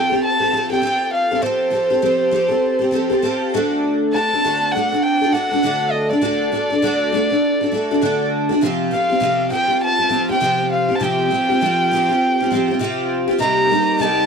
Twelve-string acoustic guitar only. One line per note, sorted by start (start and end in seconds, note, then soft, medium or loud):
0.00 0.10 F3 medium
0.00 0.11 C4 medium
0.00 0.10 G4 medium
0.09 0.41 C4 soft
0.09 0.39 G4 soft
0.09 0.38 A4 soft
0.40 0.52 C4 soft
0.40 0.52 G4 soft
0.40 0.52 A4 soft
0.52 0.70 F3 soft
0.52 0.71 C4 medium
0.52 0.70 G4 medium
0.52 0.69 A4 medium
0.70 0.82 C4 soft
0.70 0.82 G4 soft
0.70 0.82 A4 soft
0.82 1.30 F3 medium
0.82 1.31 C4 medium
0.82 1.31 G4 medium
0.82 1.30 A4 medium
1.31 1.41 C4 soft
1.31 1.41 G4 soft
1.31 1.41 A4 soft
1.42 1.69 F3 medium
1.42 1.70 C4 medium
1.42 1.70 G4 medium
1.42 1.72 A4 medium
1.70 1.89 F3 soft
1.70 1.90 C4 medium
1.70 1.90 G4 medium
1.70 1.89 A4 medium
1.90 2.01 C4 soft
1.90 2.01 G4 soft
1.90 2.02 A4 soft
2.02 2.30 F3 medium
2.02 2.31 C4 medium
2.02 2.31 G4 medium
2.02 2.32 A4 medium
2.31 2.50 F3 medium
2.31 2.50 C4 medium
2.31 2.48 G4 medium
2.31 2.47 A4 medium
2.48 2.80 C4 soft
2.48 2.79 G4 soft
2.48 2.78 A4 soft
2.79 2.91 C4 soft
2.79 2.92 G4 soft
2.79 2.92 A4 soft
2.91 3.10 F3 medium
2.91 3.10 C4 medium
2.91 3.09 G4 medium
2.91 3.09 A4 medium
3.10 3.22 C4 soft
3.10 3.22 G4 soft
3.10 3.22 A4 medium
3.22 3.52 F3 medium
3.22 3.53 C4 medium
3.22 3.53 G4 medium
3.22 3.53 A4 medium
3.54 4.13 D3 medium
3.54 4.12 A3 medium
3.54 4.13 D4 medium
3.54 4.14 F#4 medium
3.54 4.14 A4 medium
4.13 4.31 A3 soft
4.13 4.32 D4 medium
4.13 4.32 F#4 medium
4.13 4.32 A4 medium
4.33 4.44 D4 soft
4.33 4.44 F#4 soft
4.33 4.44 A4 soft
4.44 4.73 D3 medium
4.44 4.74 A3 medium
4.44 4.74 D4 medium
4.44 4.74 F#4 medium
4.44 4.74 A4 medium
4.75 4.92 A3 soft
4.75 4.92 D4 medium
4.75 4.93 F#4 soft
4.75 4.91 A4 medium
4.92 5.22 D4 soft
4.92 5.22 F#4 soft
4.92 5.20 A4 soft
5.21 5.32 D4 soft
5.21 5.33 F#4 soft
5.21 5.33 A4 soft
5.32 5.50 A3 medium
5.32 5.51 D4 medium
5.32 5.51 F#4 medium
5.32 5.50 A4 medium
5.51 5.63 D4 soft
5.51 5.63 F#4 soft
5.51 5.63 A4 soft
5.63 6.11 D3 medium
5.63 6.11 A3 medium
5.63 6.11 D4 medium
5.63 6.10 F#4 medium
5.63 6.09 A4 medium
6.10 6.21 D4 soft
6.10 6.21 F#4 soft
6.10 6.22 A4 soft
6.21 6.52 D3 medium
6.21 6.51 A3 medium
6.21 6.51 D4 medium
6.21 6.52 F#4 medium
6.21 6.53 A4 medium
6.52 6.70 A3 medium
6.52 6.71 D4 medium
6.52 6.71 F#4 medium
6.52 6.69 A4 soft
6.70 6.81 D4 soft
6.70 6.83 F#4 soft
6.70 6.82 A4 soft
6.82 7.12 D3 medium
6.82 7.11 A3 medium
6.82 7.12 D4 medium
6.82 7.13 F#4 medium
6.82 7.13 A4 medium
7.12 7.30 A3 medium
7.12 7.31 D4 medium
7.12 7.31 F#4 medium
7.12 7.29 A4 medium
7.30 7.61 D4 soft
7.30 7.61 F#4 soft
7.30 7.60 A4 medium
7.61 7.71 D4 soft
7.61 7.73 F#4 soft
7.61 7.73 A4 soft
7.72 7.90 A3 medium
7.72 7.90 D4 medium
7.72 7.90 F#4 medium
7.72 7.90 A4 medium
7.91 8.01 D4 soft
7.91 8.01 F#4 soft
7.91 8.02 A4 medium
8.01 8.50 D3 medium
8.01 8.50 A3 medium
8.01 8.50 D4 medium
8.01 8.49 F#4 medium
8.01 8.48 A4 medium
8.49 8.62 D4 soft
8.49 8.62 F#4 medium
8.49 8.62 A4 medium
8.61 8.92 C3 medium
8.61 8.90 F3 medium
8.61 8.90 C4 medium
8.61 8.91 F4 medium
8.61 8.92 G4 medium
8.91 9.10 F3 medium
8.91 9.10 C4 medium
8.91 9.10 F4 medium
8.91 9.08 G4 medium
9.10 9.19 C4 soft
9.10 9.20 F4 soft
9.10 9.21 G4 soft
9.20 9.51 C3 medium
9.20 9.49 F3 medium
9.20 9.50 C4 medium
9.20 9.51 F4 medium
9.20 9.51 G4 medium
9.50 9.69 F3 medium
9.50 9.69 C4 medium
9.50 9.68 F4 medium
9.50 9.66 G4 medium
9.68 9.99 C4 soft
9.68 9.98 F4 soft
9.68 9.97 G4 soft
9.98 10.09 C4 soft
9.98 10.09 F4 soft
9.98 10.10 G4 soft
10.09 10.29 F3 medium
10.09 10.29 C4 medium
10.09 10.29 F4 medium
10.09 10.28 G4 medium
10.29 10.40 C4 soft
10.29 10.41 F4 soft
10.29 10.41 G4 soft
10.40 10.89 C3 medium
10.40 10.89 F3 medium
10.40 10.89 C4 medium
10.40 10.89 F4 medium
10.40 10.87 G4 medium
10.88 10.99 C4 soft
10.88 11.00 F4 soft
10.88 11.00 G4 soft
10.99 11.31 C3 medium
10.99 11.29 F3 medium
10.99 11.30 C4 medium
10.99 11.31 F4 medium
10.99 11.31 G4 medium
11.30 11.49 F3 soft
11.30 11.49 C4 medium
11.30 11.49 F4 medium
11.30 11.48 G4 medium
11.49 11.61 C4 soft
11.49 11.61 F4 soft
11.49 11.61 G4 soft
11.61 11.91 C3 medium
11.61 11.90 F3 medium
11.61 11.91 C4 medium
11.61 11.92 F4 medium
11.61 11.92 G4 medium
11.91 12.09 F3 medium
11.91 12.10 C4 medium
11.91 12.09 F4 medium
11.91 12.08 G4 medium
12.09 12.40 C4 soft
12.09 12.40 F4 soft
12.09 12.39 G4 medium
12.40 12.50 C4 soft
12.40 12.51 F4 soft
12.40 12.52 G4 medium
12.51 12.69 F3 medium
12.51 12.70 C4 medium
12.51 12.69 F4 medium
12.51 12.67 G4 medium
12.68 12.79 C4 soft
12.68 12.80 F4 soft
12.68 12.80 G4 medium
12.79 13.28 C3 medium
12.79 13.29 F3 medium
12.79 13.29 C4 medium
12.79 13.28 F4 medium
12.79 13.27 G4 medium
13.28 13.39 C4 soft
13.28 13.39 F4 soft
13.28 13.39 G4 medium
13.38 13.70 C3 medium
13.38 13.68 G3 medium
13.38 13.70 A#3 medium
13.38 13.71 D#4 medium
13.38 13.71 G4 medium
13.70 13.99 G3 medium
13.70 13.99 A#3 medium
13.70 13.98 D#4 medium
13.70 14.00 G4 medium
13.99 14.26 C3 medium
13.99 14.26 G3 medium
13.99 14.26 A#3 medium
13.99 14.26 D#4 medium
13.99 14.26 G4 medium